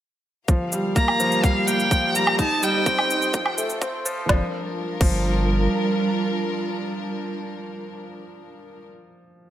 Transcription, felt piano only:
0.49 F3
0.72 G3
0.96 A#3
1.20 F3
1.44 G3
1.68 A#3
1.91 F3
2.15 G3
2.39 D#4
2.62 G3
2.86 C4
3.10 D#4
3.34 F3
3.58 A3
3.82 C4
4.05 F3
4.29 F3
5.01 F3

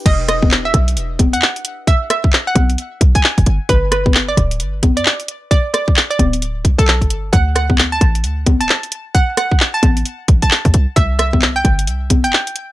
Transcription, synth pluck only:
0.06 D#5
0.28 D#5
0.65 E5
1.33 F#5
1.88 E5
2.11 E5
2.47 F#5
3.15 G#5
3.69 B4
3.92 B4
4.28 D5
4.97 D5
5.51 D5
5.74 D5
6.10 D5
6.79 A4
7.33 F#5
7.55 F#5
7.92 A5
8.61 A5
9.15 F#5
9.37 F#5
9.74 A5
10.42 A5
10.96 E5
11.19 E5
11.56 G5
12.24 G5

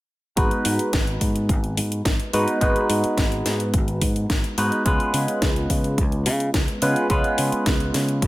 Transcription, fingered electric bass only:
0.37 G#1
0.66 G#2
0.93 G#1
1.21 G#2
1.49 G#1
1.78 G#2
2.05 G#1
2.34 G#2
2.61 G#1
2.90 G#2
3.04 muted fingered electric bass stroke
3.18 G#1
3.46 G#2
3.74 G#1
4.02 G#2
4.30 G#1
4.58 G#2
4.86 C#2
5.14 C#3
5.42 C#2
5.70 C#3
5.98 C#2
6.26 C#3
6.54 C#2
6.82 C#3
7.10 C#2
7.38 C#3
7.52 muted fingered electric bass stroke
7.66 C#2
7.94 C#3
8.22 C#2

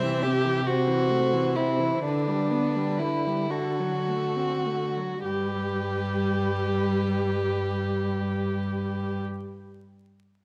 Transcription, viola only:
0.03 E3
0.24 C3
0.45 E3
0.66 C3
0.87 E3
1.11 A3
1.33 E3
1.56 C3
1.80 E3
2.04 D3
2.27 G3
2.51 B3
2.76 G3
3.00 D3
3.27 G3
3.51 D3
3.80 F#3
4.08 A3
4.36 C4
4.66 A3
4.97 F#3
5.23 G3

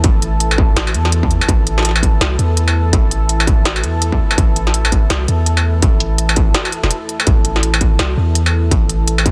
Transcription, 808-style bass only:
0.04 A1
0.76 A1
0.94 E2
1.48 A1
2.21 C2
2.39 E2
2.93 A1
3.83 E2
4.38 A1
5.10 C2
5.28 E2
5.83 A1
6.83 E1
7.27 A1
7.99 C2
8.17 E2
8.71 A1

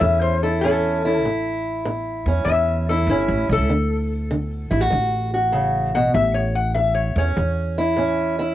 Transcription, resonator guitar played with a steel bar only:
0.00 E5
0.21 C5
0.43 A4
0.61 A4
2.45 E5
2.89 A4
3.10 E4
3.52 A4
5.95 F#5
6.14 E5
6.34 C#5
6.55 F#5
6.74 E5
6.95 C#5
7.18 C#5

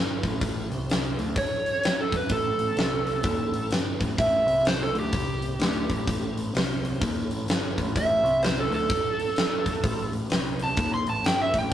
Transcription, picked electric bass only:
Already playing: G1
0.23 A1
0.41 A1
0.71 C2
1.18 D2
2.30 A1
2.58 A1
2.76 C2
3.24 D#2
3.52 A1
3.70 G1
4.00 A1
4.18 A1
4.46 C2
4.94 D2
5.12 C2
5.59 D2
5.90 A1
6.07 A1
6.35 A1
6.54 C2
7.01 D#2
7.30 A1
7.47 G1
7.78 A1
7.95 A1
8.24 C2
8.70 D2
9.84 A1
10.12 A1
10.29 C2
10.77 D#2
11.06 A1
11.23 G1
11.54 A1

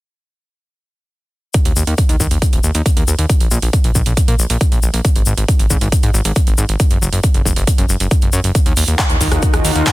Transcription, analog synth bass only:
1.65 D#2
1.76 D#2
1.87 D#2
2.09 D#2
2.20 D#2
2.31 D#2
2.53 D#1
2.64 D#2
2.75 D#2
2.97 D#2
3.07 D#2
3.19 D#2
3.40 A#1
3.51 A#1
3.62 A#1
3.84 A#1
3.95 A#1
4.06 A#1
4.28 A#2
4.39 A#1
4.50 A#1
4.72 A#1
4.83 A#1
4.93 A#1
5.15 G#1
5.26 G#1
5.37 G#1
5.59 G#1
5.70 G#1
5.81 G#1
6.03 G#2
6.14 G#1
6.25 G#1
6.47 G#1
6.58 G#1
6.69 G#1
6.91 F#1
7.02 F#1
7.12 F#1
7.34 F#1
7.45 F#1
7.56 F#1
7.78 F#1
7.89 F#1
8.00 F#1
8.22 F#1
8.33 F#2
8.44 F#1
8.66 D#2
8.77 D#2
8.88 D#2
9.10 D#2
9.21 D#2
9.32 D#2
9.54 D#1
9.64 D#2
9.75 D#2

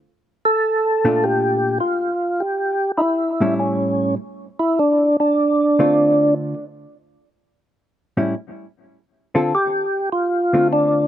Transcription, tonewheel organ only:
0.45 A4
1.24 G4
1.80 F4
2.40 G4
2.98 D#4 E4
3.60 C#4
4.59 E4
4.79 D4
5.20 D4
9.55 G4
10.12 F4
10.73 D4

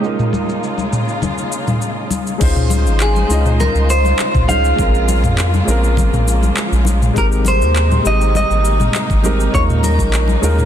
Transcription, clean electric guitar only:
3.02 G#4
3.60 A#4
3.90 C5
4.49 F5
7.18 A#4
7.48 C5
8.07 D#5
8.37 D#5
9.55 C#5
9.84 A#4

